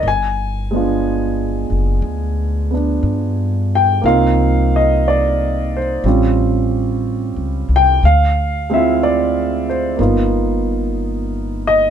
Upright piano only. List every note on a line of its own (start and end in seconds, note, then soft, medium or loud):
0.08 1.69 G#5 medium
0.71 4.02 G#3 soft
0.71 2.69 B3 soft
0.71 2.72 D4 soft
0.76 4.05 F4 soft
2.71 4.03 B3 soft
2.71 4.04 D4 soft
3.75 4.06 G5 medium
4.02 6.03 A#3 soft
4.02 6.04 C4 soft
4.02 6.04 D#4 soft
4.06 6.05 F4 soft
4.06 4.75 F5 medium
4.76 5.06 D#5 medium
5.08 5.76 D5 medium
5.77 6.03 C5 soft
6.05 8.02 G3 soft
6.05 8.03 C4 soft
6.05 8.03 C#4 soft
6.05 8.03 F4 soft
7.76 8.02 G5 medium
8.05 8.67 F5 medium
8.70 9.98 G#3 soft
8.70 9.99 C4 soft
8.74 10.00 E4 soft
8.74 10.00 F4 soft
8.74 9.00 E5 medium
9.03 9.65 D5 medium
9.70 9.97 C5 medium
9.96 11.90 A#3 soft
9.96 11.90 B3 soft
9.96 11.90 D#4 soft
10.01 11.90 F4 soft
11.67 11.90 D#5 medium